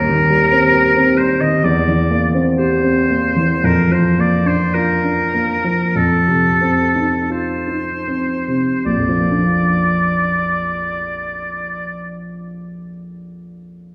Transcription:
0.00 1.61 D#2 medium
0.00 1.19 A#4 loud
0.09 0.44 D#3 soft
0.30 0.65 G3 soft
0.52 0.87 C4 medium
0.74 1.10 G4 medium
0.96 1.32 C4 medium
1.17 1.55 G3 soft
1.17 1.42 C5 medium
1.40 1.65 D#3 soft
1.40 1.65 D#5 medium
1.64 3.60 E2 medium
1.64 2.31 D5 medium
1.88 2.26 E3 soft
2.11 2.50 A#3 soft
2.34 2.74 C4 medium
2.59 3.00 G4 soft
2.59 3.66 C5 medium
2.83 3.26 C4 soft
3.10 3.54 A#3 soft
3.36 3.64 E3 soft
3.64 5.92 F2 medium
3.64 3.94 A#4 medium
3.91 4.35 F3 soft
3.91 4.21 C5 medium
4.18 4.64 A#3 soft
4.18 4.48 D5 medium
4.46 4.92 D4 soft
4.46 4.76 C5 medium
4.74 5.22 F4 soft
4.74 5.97 A#4 medium
5.04 5.52 D4 soft
5.34 5.84 A#3 soft
5.64 5.96 F3 soft
5.96 8.83 F2 medium
5.96 7.31 A4 medium
6.28 6.82 C3 soft
6.61 7.17 C4 soft
6.95 7.53 D#4 soft
7.30 7.92 F4 soft
7.30 8.84 C5 medium
7.68 8.33 D#4 soft
8.08 8.72 C4 soft
8.48 8.86 C3 soft
8.85 12.33 A#1 soft
8.85 12.33 D5 medium
8.97 12.44 F2 soft
9.09 12.56 F3 soft
9.20 12.67 A#3 soft
9.31 12.79 D4 soft
9.43 12.90 F4 soft

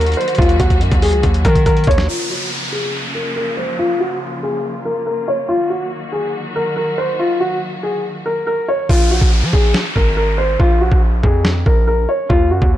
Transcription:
0.00 0.15 D#2 loud
0.00 2.05 D#3 medium
0.00 2.05 F#3 medium
0.00 2.05 A#3 medium
0.00 2.05 F#4 medium
0.00 0.14 A#4 medium
0.00 closed hi-hat medium
0.06 closed hi-hat medium
0.12 closed hi-hat soft
0.14 0.35 C5 medium
0.14 closed hi-hat medium
0.21 closed hi-hat medium
0.28 closed hi-hat medium
0.35 0.59 D#2 loud
0.35 0.57 F4 medium
0.35 kick loud
0.35 closed hi-hat medium
0.42 closed hi-hat medium
0.49 closed hi-hat medium
0.59 0.82 D#2 loud
0.59 0.78 F#4 medium
0.59 kick medium
0.59 closed hi-hat medium
0.70 kick medium
0.70 closed hi-hat medium
0.81 0.91 F#2 loud
0.81 closed hi-hat medium
0.92 1.14 D#2 loud
0.92 kick medium
0.92 closed hi-hat medium
1.02 1.20 G#4 medium
1.02 open hi-hat medium
1.13 1.23 C#2 loud
1.13 closed hi-hat soft
1.23 1.44 D#2 loud
1.23 kick medium
1.23 closed hi-hat medium
1.34 closed hi-hat medium
1.45 1.86 D#3 loud
1.45 1.63 A#4 medium
1.45 kick medium
1.45 closed hi-hat medium
1.55 kick medium
1.55 closed hi-hat medium
1.66 1.84 A#4 medium
1.66 kick medium
1.66 closed hi-hat medium
1.77 closed hi-hat soft
1.84 2.08 D#2 loud
1.84 2.06 C#5 medium
1.84 kick loud
1.84 closed hi-hat medium
1.91 closed hi-hat medium
1.98 snare medium
2.09 5.46 C#3 medium
2.09 5.46 F3 medium
2.09 8.85 A#3 medium
2.09 5.46 F4 medium
2.09 2.27 F4 loud
2.09 downlifter medium
2.30 2.48 F#4 medium
2.72 2.91 G#4 medium
3.15 3.33 A#4 medium
3.36 3.54 A#4 medium
3.57 3.75 C5 medium
3.79 3.97 F4 loud
4.00 4.18 F#4 medium
4.43 4.61 G#4 medium
4.85 5.03 A#4 medium
5.07 5.25 A#4 medium
5.28 5.46 C#5 medium
5.49 8.86 D#3 medium
5.49 8.86 F#3 medium
5.49 5.67 F4 loud
5.49 8.86 F#4 medium
5.70 5.88 F#4 medium
6.12 6.31 G#4 medium
6.56 6.74 A#4 medium
6.77 6.95 A#4 medium
6.98 7.16 C5 medium
7.19 7.37 F4 medium
7.40 7.59 F#4 medium
7.83 8.01 G#4 medium
8.26 8.44 A#4 medium
8.47 8.65 A#4 medium
8.68 8.86 C#5 medium
8.89 9.20 A#1 loud
8.89 9.08 F4 loud
8.89 kick loud
8.89 crash loud
8.89 downlifter medium
9.11 9.29 F#4 medium
9.21 9.44 A#1 loud
9.21 kick medium
9.43 9.53 F3 loud
9.53 9.74 A#1 loud
9.53 9.71 G#4 medium
9.53 kick medium
9.74 snare loud
9.95 10.57 G#1 loud
9.95 10.14 A#4 medium
9.95 kick loud
10.17 10.35 A#4 medium
10.38 10.56 C5 medium
10.60 10.90 A#1 loud
10.60 10.78 F4 loud
10.60 kick loud
10.81 10.99 F#4 medium
10.92 11.22 A#1 loud
10.92 kick medium
11.23 11.64 F2 loud
11.23 11.42 G#4 medium
11.23 kick medium
11.45 snare loud
11.66 12.07 A#1 loud
11.66 11.84 A#4 medium
11.66 kick loud
11.87 12.05 A#4 medium
12.09 12.27 C#5 medium
12.29 12.53 D#2 loud
12.29 12.48 F4 loud
12.29 kick loud
12.51 12.61 F#2 medium
12.51 12.69 F#4 medium
12.62 12.78 D#2 loud
12.62 kick medium

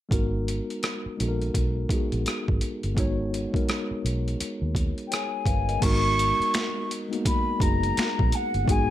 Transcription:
0.09 0.60 G#1 medium
0.09 1.10 G#3 medium
0.09 1.11 B3 medium
0.09 1.12 D#4 medium
0.09 1.12 F#4 medium
0.09 kick medium
0.09 closed hi-hat medium
0.13 1.13 A#4 medium
0.48 closed hi-hat medium
0.70 closed hi-hat soft
0.83 cross-stick medium
0.83 closed hi-hat medium
1.06 muted fingered electric bass stroke soft
1.17 1.49 A#1 medium
1.17 1.85 G#3 medium
1.17 1.85 B3 medium
1.17 1.86 D#4 medium
1.17 1.87 F#4 medium
1.17 closed hi-hat medium
1.22 1.28 A4 medium
1.28 1.90 A#4 medium
1.42 closed hi-hat soft
1.54 1.85 B1 medium
1.54 kick medium
1.54 closed hi-hat medium
1.89 2.90 G#3 medium
1.89 2.91 B3 medium
1.89 2.91 D#4 medium
1.89 2.92 F#4 medium
1.89 kick medium
1.89 closed hi-hat medium
1.94 2.92 G#4 medium
2.12 2.24 A#1 medium
2.12 closed hi-hat soft
2.26 muted fingered electric bass stroke soft
2.26 cross-stick medium
2.26 closed hi-hat medium
2.48 2.60 G#1 medium
2.48 kick medium
2.61 closed hi-hat medium
2.83 2.98 G1 medium
2.83 closed hi-hat soft
2.95 3.45 G#1 medium
2.95 3.48 G#3 medium
2.95 3.48 B3 medium
2.95 3.49 D#4 medium
2.95 3.50 F#4 medium
2.95 kick medium
2.95 closed hi-hat medium
3.00 3.50 C#5 medium
3.34 closed hi-hat medium
3.51 4.82 G#3 medium
3.51 4.83 B3 medium
3.51 4.83 D#4 medium
3.51 4.84 F#4 medium
3.51 kick medium
3.56 4.85 A#4 medium
3.56 closed hi-hat soft
3.69 cross-stick medium
3.69 closed hi-hat medium
3.91 muted fingered electric bass stroke soft
4.05 4.34 B1 medium
4.05 closed hi-hat medium
4.28 closed hi-hat soft
4.40 muted fingered electric bass stroke soft
4.40 closed hi-hat medium
4.62 4.92 D#2 medium
4.75 kick medium
4.75 closed hi-hat medium
4.98 closed hi-hat soft
5.07 5.45 C#5 medium
5.07 5.14 G5 medium
5.11 5.45 G#4 soft
5.11 5.84 G#5 medium
5.11 cross-stick medium
5.11 closed hi-hat medium
5.46 5.77 G1 medium
5.46 5.67 B4 medium
5.46 5.67 F5 medium
5.46 kick medium
5.46 closed hi-hat medium
5.69 5.84 A#4 soft
5.69 6.02 D#5 medium
5.69 closed hi-hat soft
5.80 6.31 G#1 loud
5.80 6.98 G#3 medium
5.80 6.99 B3 medium
5.80 7.00 D#4 medium
5.80 7.00 F#4 medium
5.80 6.89 C#6 loud
5.80 kick loud
5.80 closed hi-hat medium
5.80 crash medium
5.85 7.01 A#4 loud
6.19 closed hi-hat medium
6.40 muted fingered electric bass stroke soft
6.40 closed hi-hat soft
6.54 finger snap medium
6.54 snare loud
6.54 closed hi-hat medium
6.91 closed hi-hat medium
7.09 7.56 G#3 medium
7.09 7.57 B3 medium
7.09 7.58 D#4 medium
7.09 7.58 F#4 medium
7.13 7.59 A#3 medium
7.13 closed hi-hat soft
7.25 7.64 B5 medium
7.25 kick medium
7.25 closed hi-hat medium
7.58 7.91 F#1 medium
7.58 8.60 G#3 medium
7.58 8.61 B3 medium
7.58 8.62 D#4 medium
7.58 8.62 F#4 medium
7.58 8.37 A#5 medium
7.58 kick loud
7.58 closed hi-hat medium
7.63 8.63 G#4 medium
7.83 closed hi-hat soft
7.97 finger snap medium
7.97 muted fingered electric bass stroke soft
7.97 snare loud
7.97 closed hi-hat medium
8.19 8.31 A#1 medium
8.19 kick medium
8.32 8.72 F#5 medium
8.32 closed hi-hat medium
8.54 8.66 G1 medium
8.54 closed hi-hat soft
8.65 8.86 G#1 loud
8.65 8.90 G#3 medium
8.65 8.90 B3 medium
8.65 8.90 D#4 medium
8.65 8.90 F#4 medium
8.65 kick loud
8.69 8.90 G#4 loud
8.69 8.90 G#5 loud
8.69 closed hi-hat medium

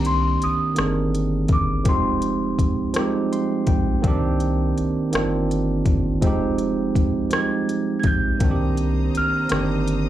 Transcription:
0.00 0.37 C2 loud
0.00 0.69 D#3 medium
0.00 0.66 A#3 medium
0.00 0.67 C4 medium
0.00 0.67 D4 medium
0.00 0.68 G4 medium
0.05 0.43 C6 medium
0.05 closed hi-hat soft
0.42 0.49 G1 soft
0.42 1.54 D#6 medium
0.42 closed hi-hat soft
0.74 1.74 D#3 medium
0.74 1.74 A#3 medium
0.74 1.75 C4 medium
0.74 closed hi-hat medium
0.78 1.47 G1 medium
0.78 1.76 D4 medium
0.78 0.85 G#4 soft
0.78 cross-stick medium
0.87 1.80 A#4 medium
1.15 closed hi-hat soft
1.48 1.88 G1 medium
1.48 kick medium
1.48 closed hi-hat soft
1.53 1.88 D6 medium
1.84 2.55 F1 medium
1.84 2.83 F3 medium
1.84 2.84 G#3 medium
1.84 2.84 C4 medium
1.84 2.85 D#4 medium
1.84 kick loud
1.84 closed hi-hat medium
1.89 2.86 G4 medium
1.89 3.29 C6 medium
2.22 closed hi-hat soft
2.59 2.67 A#1 soft
2.59 kick medium
2.59 closed hi-hat soft
2.93 3.92 F3 medium
2.93 3.02 G3 soft
2.93 3.94 C4 medium
2.93 cross-stick loud
2.93 closed hi-hat medium
2.98 3.96 G#3 medium
2.98 3.95 D#4 medium
2.98 3.95 G4 medium
3.33 3.66 C6 medium
3.33 closed hi-hat soft
3.67 4.01 A#1 loud
3.67 4.02 G5 medium
3.67 kick medium
3.67 closed hi-hat soft
4.02 4.73 C2 loud
4.02 5.01 D#3 medium
4.02 5.02 A#3 medium
4.02 5.02 C4 medium
4.02 kick loud
4.02 closed hi-hat medium
4.06 5.03 D4 medium
4.06 5.04 G4 medium
4.40 closed hi-hat soft
4.78 4.86 G1 soft
4.78 closed hi-hat soft
5.10 6.10 D#3 medium
5.10 6.11 A#3 medium
5.10 6.12 C4 medium
5.10 closed hi-hat medium
5.15 5.83 G1 medium
5.15 6.12 D4 medium
5.15 6.13 F4 medium
5.15 cross-stick loud
5.51 closed hi-hat soft
5.86 6.19 G1 loud
5.86 kick medium
5.86 closed hi-hat soft
6.21 6.92 F1 medium
6.21 7.20 F3 medium
6.21 7.20 G#3 medium
6.21 7.21 C4 medium
6.21 7.22 D#4 medium
6.21 kick medium
6.21 closed hi-hat medium
6.27 7.23 G4 medium
6.58 closed hi-hat soft
6.95 7.03 A#1 soft
6.95 kick medium
6.95 closed hi-hat soft
7.30 8.29 F3 medium
7.30 7.38 G3 soft
7.30 8.30 C4 medium
7.30 cross-stick loud
7.30 closed hi-hat medium
7.34 8.33 G#3 medium
7.34 8.31 D#4 medium
7.34 8.32 G4 medium
7.34 7.95 G#6 medium
7.69 closed hi-hat soft
7.99 8.05 G#6 medium
7.99 closed hi-hat soft
8.04 8.37 A#1 medium
8.04 9.18 G6 medium
8.04 kick medium
8.39 9.10 C2 loud
8.39 9.38 D#3 medium
8.39 9.38 A#3 medium
8.39 9.39 C4 medium
8.39 10.09 C5 medium
8.39 10.09 A#5 medium
8.39 10.09 D#6 medium
8.39 kick loud
8.39 closed hi-hat medium
8.43 9.40 D4 medium
8.43 8.49 F#4 medium
8.51 9.44 G4 medium
8.77 closed hi-hat soft
9.15 9.22 G1 soft
9.15 10.09 F6 medium
9.15 closed hi-hat soft
9.48 10.09 G1 loud
9.48 9.55 D3 soft
9.48 10.09 A#3 medium
9.48 10.09 C4 medium
9.48 cross-stick loud
9.48 closed hi-hat medium
9.52 10.09 D#3 medium
9.52 10.09 D4 medium
9.52 10.09 G4 medium
9.87 closed hi-hat soft

